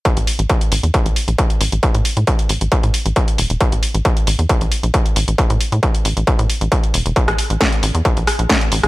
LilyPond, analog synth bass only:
\new Staff \with { instrumentName = "Analog synth bass" } { \clef bass \time 4/4 \key c \mixolydian \tempo 4 = 135 r16 a,,16 r16 a,,16 r8 a,,16 e,16 r16 bes,,16 r16 bes,,16 r8 a,,16 a,,16 | r16 a,16 r16 a,16 r8 a,,16 a,,16 r16 a,16 r16 a,,16 r8 e,,16 e,,16 | r16 a,,16 r16 a,,16 r8 a,,16 e,16 r16 bes,,16 r16 bes,,16 r8 a,,16 a,,16 | r16 a,16 r16 a,16 r8 a,,16 a,,16 r16 a,16 r16 a,,16 r8 e,,16 e,,16 |
r16 a,,16 r16 a,,16 r8 a,,16 e,16 r16 bes,,16 r16 bes,,16 r8 a,,16 a,,16 | }